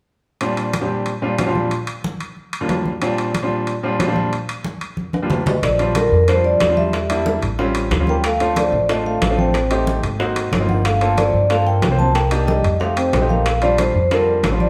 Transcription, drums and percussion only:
0.41 high conga, high timbale
0.57 high conga, high timbale
0.73 high conga, high timbale, low timbale
0.90 high conga
1.06 high conga, high timbale
1.23 high conga
1.39 high conga, high timbale, low timbale
1.55 high conga
1.71 high conga, high timbale
1.87 high conga, high timbale
2.04 high conga, low timbale
2.21 high conga, high timbale
2.37 high conga
2.53 high conga, high timbale
2.69 high conga, high timbale, low timbale
2.85 high conga
3.02 high conga, high timbale
3.18 high conga, high timbale
3.35 high conga, high timbale, low timbale
3.51 high conga
3.67 high conga, high timbale
3.84 high conga
4.00 high conga, high timbale, low timbale
4.16 high conga
4.32 high conga, high timbale
4.49 high conga, high timbale
4.64 high conga, low timbale
4.81 high conga, high timbale
4.97 high conga
5.13 high conga, high timbale
5.30 low conga, low timbale
5.46 low conga, low timbale
5.63 high bongo, high conga, high timbale
5.79 high conga, high timbale
5.95 high bongo, high conga, high timbale, low timbale
6.12 high conga
6.28 high bongo, high conga, high timbale
6.45 high conga
6.60 high bongo, low bongo, high conga, high timbale, low timbale
6.77 high conga
6.93 high bongo, high conga, high timbale
7.10 high conga, high timbale
7.26 high bongo, high conga, low timbale
7.42 high bongo, high conga, high timbale
7.59 high bongo, high conga
7.75 high bongo, high conga, high timbale
7.91 high bongo, low bongo, high conga, high timbale, low timbale
8.07 high bongo, high conga
8.24 high bongo, high timbale
8.40 high conga, high timbale
8.56 high bongo, high conga, high timbale, low timbale
8.89 high bongo, high conga, high timbale
9.06 high conga
9.22 high bongo, low bongo, high conga, high timbale, low timbale
9.38 high conga
9.54 high bongo, high conga, high timbale
9.71 high conga, high timbale
9.87 high bongo, high conga, low timbale
10.03 high bongo, high timbale
10.20 high bongo, high conga
10.36 high bongo, high conga, high timbale
10.53 high bongo, low bongo, high conga, high timbale, low timbale
10.69 high bongo, high conga
10.85 high bongo, high conga, high timbale
11.01 high conga, high timbale
11.18 high bongo, high conga, high timbale, low timbale
11.34 high conga
11.50 high bongo, high conga, high timbale
11.67 high conga
11.82 high bongo, low bongo, high conga, high timbale, low timbale
11.99 high conga
12.15 high bongo, high conga, high timbale
12.31 high conga, high timbale
12.48 high bongo, high conga, low timbale
12.64 high bongo, high conga, high timbale
12.81 high bongo, high conga
12.97 high bongo, high conga, high timbale
13.13 high bongo, low bongo, high conga, high timbale, low timbale
13.30 high bongo, high conga
13.46 high bongo, high timbale
13.62 high conga, high timbale
13.78 high bongo, high conga, high timbale, low timbale
13.95 high conga
14.11 high bongo, high conga, high timbale
14.28 high conga
14.43 high bongo, low bongo, high conga, high timbale, low timbale
14.60 high conga

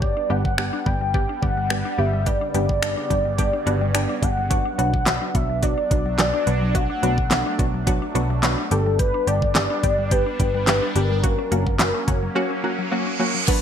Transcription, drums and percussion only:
0.02 kick
0.45 kick
0.58 finger snap
0.86 kick
1.14 kick
1.43 kick
1.70 finger snap
2.26 kick, closed hi-hat
2.54 closed hi-hat
2.69 kick
2.83 finger snap, closed hi-hat
3.11 kick, closed hi-hat
3.38 kick, closed hi-hat
3.67 closed hi-hat
3.95 finger snap, closed hi-hat
4.22 kick, closed hi-hat
4.51 kick, closed hi-hat
4.79 closed hi-hat
4.94 kick
5.06 snare, clap, closed hi-hat
5.35 kick, closed hi-hat
5.63 kick, closed hi-hat
5.91 kick, closed hi-hat
6.18 snare, clap, closed hi-hat
6.47 closed hi-hat
6.75 kick, closed hi-hat
7.03 closed hi-hat
7.18 kick
7.31 snare, clap, closed hi-hat
7.59 kick, closed hi-hat
7.87 kick, closed hi-hat
8.15 closed hi-hat
8.43 snare, clap, closed hi-hat
8.71 closed hi-hat
8.99 kick, closed hi-hat
9.27 closed hi-hat
9.42 kick
9.55 snare, clap, closed hi-hat
9.83 kick, closed hi-hat
10.11 kick, closed hi-hat
10.40 kick, closed hi-hat
10.67 snare, clap, closed hi-hat
10.96 closed hi-hat
11.24 kick, closed hi-hat
11.52 closed hi-hat
11.67 kick
11.79 snare, clap, closed hi-hat
12.08 kick, closed hi-hat
13.48 kick, closed hi-hat, crash

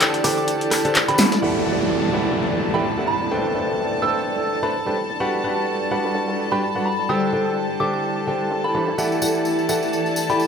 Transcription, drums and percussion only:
0.01 snare, clap, closed hi-hat, tambourine
0.14 closed hi-hat, tambourine
0.24 cross-stick, closed hi-hat, open hi-hat, tambourine
0.38 tambourine
0.48 closed hi-hat, tambourine
0.61 closed hi-hat, tambourine
0.71 cross-stick, clap, closed hi-hat, open hi-hat, tambourine
0.85 closed hi-hat, tambourine
0.95 snare, clap, closed hi-hat, tambourine
1.08 snare, closed hi-hat, tambourine
1.18 snare, closed hi-hat, open hi-hat, tambourine
1.32 snare, closed hi-hat, tambourine
2.37 closed hi-hat
2.97 snare
3.21 snare
3.31 closed hi-hat
3.55 snare
3.79 closed hi-hat
4.26 closed hi-hat
4.49 closed hi-hat
4.73 closed hi-hat
4.86 snare
4.97 snare, closed hi-hat
5.10 snare
5.44 closed hi-hat
5.67 closed hi-hat
5.91 snare
6.05 snare, closed hi-hat
6.15 snare
6.28 snare, closed hi-hat
6.38 closed hi-hat
6.62 closed hi-hat
6.75 snare
6.86 closed hi-hat
6.99 snare
7.09 closed hi-hat
7.33 snare
7.56 closed hi-hat
7.70 closed hi-hat
7.80 closed hi-hat
8.04 closed hi-hat
8.27 closed hi-hat
8.51 snare, closed hi-hat
8.64 snare, closed hi-hat
8.74 snare, closed hi-hat
8.88 snare, closed hi-hat
8.98 closed hi-hat, tambourine
9.12 tambourine
9.22 tambourine
9.35 tambourine
9.45 closed hi-hat, tambourine
9.59 tambourine
9.69 closed hi-hat, tambourine
9.83 tambourine
9.93 closed hi-hat, tambourine
10.06 tambourine
10.16 closed hi-hat, tambourine
10.29 tambourine
10.40 tambourine

